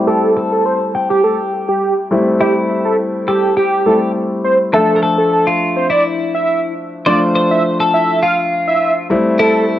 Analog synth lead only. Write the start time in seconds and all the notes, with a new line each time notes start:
0.07 A4
0.52 A4
0.65 C5
1.10 G4
1.24 A4
1.68 G4
2.40 G4
2.85 A4
3.28 G4
3.57 G4
3.86 A4
4.44 C5
4.74 A4
5.18 A4
5.32 A4
5.76 C5
5.90 D5
6.35 E5
7.07 D5
7.51 E5
7.94 E5
8.23 F5
8.68 E5
9.40 A4